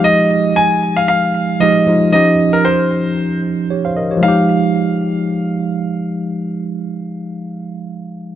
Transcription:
Already playing: tine electric piano F3 G#3 D#4 G4
0.04 grand piano D#5
0.56 grand piano G#5
0.97 grand piano F5
1.08 grand piano F5
1.60 tine electric piano F3 G#3 D#4 G4, grand piano D#5
1.86 tine electric piano F3 G#3 D#4 F4
2.12 tine electric piano F3 C#4 D#4 G4, grand piano D#5
2.53 grand piano A#4
2.65 grand piano C5
3.70 tine electric piano G4 C#5
3.85 tine electric piano C5 F5
3.97 tine electric piano A#4 D#5
4.11 tine electric piano G4 C#5
4.17 tine electric piano F3 G#3
4.23 tine electric piano D#4, grand piano F5
4.28 tine electric piano G4

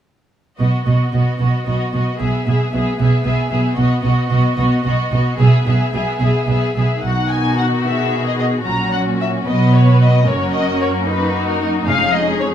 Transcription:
0.58 double bass section B1, cello section B2, viola section B3, violin section F#4 D#5
0.85 double bass section B1, cello section B2, viola section B3, violin section F#4 D#5
1.12 double bass section B1, cello section B2, viola section B3, violin section F#4 D#5
1.39 double bass section B1, cello section B2, viola section B3, violin section F#4 D#5
1.66 double bass section B1, cello section B2, viola section B3, violin section F#4 D#5
1.93 double bass section B1, cello section B2, viola section B3, violin section F#4 D#5
2.18 double bass section B1, cello section B2, viola section B3, violin section G#4 E5
2.46 double bass section B1, cello section B2, viola section B3, violin section G#4 E5
2.73 double bass section B1, cello section B2, viola section B3, violin section G#4 E5
2.99 double bass section B1, cello section B2, viola section B3, violin section G#4 E5
3.25 double bass section B1, cello section B2, viola section B3, violin section G#4 E5
3.50 double bass section B1, cello section B2, viola section B3, violin section G#4 E5
3.76 double bass section B1, cello section B2, viola section B3, violin section F#4 D#5
4.03 double bass section B1, cello section B2, viola section B3, violin section F#4 D#5
4.28 double bass section B1, cello section B2, viola section B3, violin section F#4 D#5
4.55 double bass section B1, cello section B2, viola section B3, violin section F#4 D#5
4.83 double bass section B1, cello section B2, viola section B3, violin section F#4 D#5
5.11 double bass section B1, cello section B2, viola section B3, violin section F#4 D#5
5.38 double bass section B1, cello section B2, viola section B3, violin section G#4 E5
5.65 double bass section B1, cello section B2, viola section B3, violin section G#4 E5
5.92 double bass section B1, cello section B2, viola section B3, violin section G#4 E5
6.20 double bass section B1, cello section B2, viola section B3, violin section G#4 E5
6.47 double bass section B1, cello section B2, viola section B3, violin section G#4 E5
6.75 double bass section B1, cello section B2, viola section B3, violin section G#4 E5
7.02 double bass section B1, cello section B2, viola section D#3 D#4, violin section F#4 F#5
7.29 violin section G#5
7.58 violin section F#5
7.84 viola section B3, violin section G#4 E5
8.27 violin section D#5
8.40 violin section D#5
8.65 double bass section A#1, cello section A#2, viola section F#3 C#4, violin section F#4 A#5
8.93 violin section F#5
9.21 violin section E5
9.46 double bass section B1, cello section B2, viola section F#3 B3, violin section F#4 B4 D#5
9.74 violin section C#5
10.02 violin section D#5
10.26 double bass section F#1, cello section F#2, viola section A#3 C#4, violin section F#4 A#4 C#5
10.53 violin section D#5
10.81 violin section C#5
11.06 viola section D#4, violin section D#4 F#4 B4
11.49 violin section A#4
11.62 violin section A#4
11.86 double bass section F1, cello section F2, viola section G#3, violin section C#4 G#4 F5
12.13 violin section D#5
12.40 violin section C#5

